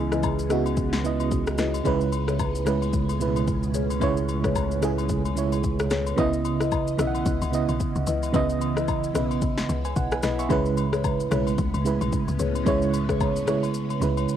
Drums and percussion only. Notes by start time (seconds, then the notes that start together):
0.12 cross-stick, shaker
0.23 kick, high agogo, low woodblock, shaker
0.39 shaker
0.50 cross-stick, shaker
0.66 high agogo, shaker
0.77 kick, shaker
0.93 snare, high agogo, shaker
1.05 shaker
1.20 high agogo, shaker
1.31 kick, shaker
1.47 cross-stick, shaker
1.58 cross-stick, snare, shaker
1.74 high agogo, shaker
1.85 kick, high agogo, shaker
2.01 shaker
2.12 high agogo, shaker
2.28 cross-stick, shaker
2.39 kick, high agogo, low woodblock, shaker
2.55 shaker
2.66 cross-stick, shaker
2.82 high agogo, shaker
2.93 kick, shaker
3.09 high agogo, shaker
3.21 shaker
3.36 high agogo, shaker
3.47 kick, shaker
3.63 shaker
3.74 shaker
3.90 high agogo, shaker
4.01 kick, high agogo, shaker
4.17 shaker
4.29 high agogo, shaker
4.44 kick, cross-stick, shaker
4.56 kick, high agogo, low woodblock, shaker
4.71 shaker
4.83 cross-stick, shaker
4.98 high agogo, shaker
5.09 kick, shaker
5.25 high agogo, shaker
5.37 shaker
5.52 high agogo, shaker
5.64 kick, shaker
5.79 cross-stick, shaker
5.90 cross-stick, snare, shaker
6.07 high agogo, shaker
6.18 kick, high agogo, shaker
6.33 shaker
6.45 high agogo, shaker
6.60 cross-stick, shaker
6.72 kick, high agogo, low woodblock, shaker
6.88 shaker
6.99 cross-stick, shaker
7.15 high agogo, shaker
7.26 kick, shaker
7.42 high agogo, shaker
7.53 shaker
7.69 high agogo, shaker
7.80 kick, shaker
7.96 shaker
8.07 shaker
8.23 high agogo, shaker
8.34 kick, high agogo, shaker
8.49 shaker
8.61 high agogo, shaker
8.77 cross-stick, shaker
8.88 kick, high agogo, low woodblock, shaker
9.04 shaker
9.15 cross-stick, shaker
9.31 high agogo, shaker
9.42 kick, shaker
9.58 snare, high agogo, shaker
9.69 shaker
9.85 high agogo, shaker
9.96 kick, shaker
10.12 cross-stick, shaker
10.23 cross-stick, snare, shaker
10.39 high agogo, shaker
10.50 kick, high agogo, shaker
10.66 shaker
10.77 high agogo, shaker
10.93 cross-stick, shaker
11.04 kick, high agogo, low woodblock, shaker
11.20 shaker
11.31 cross-stick, shaker
11.47 high agogo, shaker
11.58 kick, shaker
11.74 high agogo, shaker
11.86 shaker
12.01 high agogo, shaker
12.12 kick, shaker
12.28 shaker
12.39 shaker
12.55 high agogo, shaker
12.66 kick, high agogo, shaker
12.82 shaker
12.94 high agogo, shaker
13.09 kick, cross-stick, shaker
13.20 kick, high agogo, low woodblock, shaker
13.36 shaker
13.48 cross-stick, shaker
13.63 high agogo, shaker
13.74 shaker
13.90 high agogo, shaker
14.02 shaker
14.17 high agogo, shaker
14.29 shaker